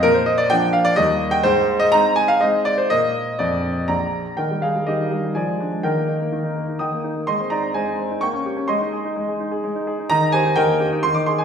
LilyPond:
\new Staff \with { instrumentName = "Grand piano" } { \time 3/4 \key ees \major \tempo 4 = 126 << { bes'16 c''16 ees''16 d''16 g''8 f''16 d''16 ees''8. g''16 | c''8. ees''16 bes''8 aes''16 f''16 ees''8 d''16 c''16 | ees''4 d''4 <d'' bes''>4 | <bes' g''>8 <aes' f''>8 <g' ees''>4 <d'' aes''>4 |
<bes' g''>4. r8 <g'' ees'''>4 | <ees'' c'''>8 <d'' bes''>8 <c'' aes''>4 <g'' des'''>4 | <ees'' c'''>4. r4. | <ees'' bes''>8 <c'' aes''>8 <bes' g''>4 c'''16 d'''16 c'''16 aes''16 | } \\ { bes,4 <f bes d'>4 <ees, g bes ees'>4 | aes,4 <aes c' ees'>4 <aes c' ees'>4 | <bes, bes bes'>4 f,4 bes,,4 | ees16 g16 ees'16 g16 ees16 ees'16 g16 ees'16 f16 aes16 d'16 aes16 |
ees16 bes16 ees'16 bes16 ees16 ees'16 bes16 ees'16 ees16 bes16 ees'16 bes16 | aes16 c'16 ees'16 c'16 aes16 ees'16 c'16 ees'16 bes16 des'16 g'16 des'16 | aes16 ees'16 aes'16 ees'16 aes16 aes'16 ees'16 aes'16 aes16 ees'16 aes'16 ees'16 | ees16 ees'16 g'16 ees'16 ees16 bes16 g'16 ees'16 ees16 ees'16 aes'16 ees'16 | } >> }